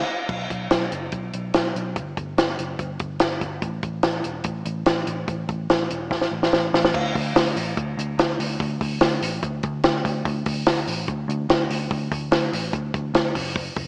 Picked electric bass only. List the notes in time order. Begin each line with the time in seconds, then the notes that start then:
0.29 B1
0.50 B1
0.71 B1
0.92 F#1
1.13 B1
1.34 B1
1.55 B1
1.75 B1
1.96 G1
2.17 G1
2.38 G1
2.58 F#1
2.79 G1
3.00 G1
3.21 G1
3.41 G1
3.62 A1
3.83 A1
4.03 A1
4.24 E1
4.45 A1
4.65 A1
4.86 A1
5.07 A1
5.28 A1
5.49 A1
5.70 A1
5.91 E1
6.11 A1
6.31 A1
6.53 A1
6.73 A1
6.94 D2
7.15 D2
7.36 D2
7.56 A1
7.77 D2
7.97 D2
8.18 D2
8.39 D2
8.60 D2
8.81 D2
9.01 D2
9.22 A1
9.43 D2
9.64 D2
9.84 D2
10.05 D2
10.25 D2
10.46 D2
10.67 D2
10.87 A1
11.08 D2
11.28 D2
11.49 D2
11.70 D2
11.91 D2
12.12 D2
12.31 D2
12.53 A1
12.73 D2
12.94 D2
13.14 D2
13.35 F#1
13.76 F#1